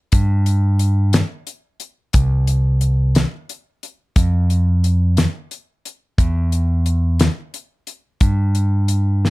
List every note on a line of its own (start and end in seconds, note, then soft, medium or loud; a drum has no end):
0.12 1.21 G2 medium
0.12 kick loud
0.12 closed hi-hat medium
0.46 closed hi-hat medium
0.79 closed hi-hat medium
1.13 snare loud
1.13 closed hi-hat medium
1.47 closed hi-hat medium
1.80 closed hi-hat medium
2.13 3.23 C2 medium
2.13 kick loud
2.13 closed hi-hat medium
2.47 closed hi-hat medium
2.81 closed hi-hat medium
3.15 snare loud
3.15 closed hi-hat medium
3.49 closed hi-hat medium
3.83 closed hi-hat medium
4.16 5.25 F2 medium
4.16 kick loud
4.16 closed hi-hat medium
4.50 closed hi-hat medium
4.84 closed hi-hat medium
5.17 snare medium
5.17 closed hi-hat medium
5.51 closed hi-hat medium
5.85 closed hi-hat medium
6.18 7.27 E2 loud
6.18 kick loud
6.18 closed hi-hat medium
6.52 closed hi-hat medium
6.86 closed hi-hat medium
7.19 snare loud
7.19 closed hi-hat medium
7.54 closed hi-hat medium
7.87 closed hi-hat medium
8.21 9.30 G2 medium
8.21 kick loud
8.21 closed hi-hat medium
8.55 closed hi-hat medium
8.88 closed hi-hat medium
9.25 snare medium